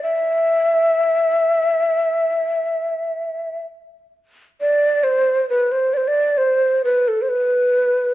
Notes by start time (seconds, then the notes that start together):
0.03 E5
4.61 D5
5.04 C5
5.49 B4
5.72 C5
5.94 C5 D5
6.08 D5
6.37 C5
6.84 B4
7.08 A4
7.22 C5
7.29 B4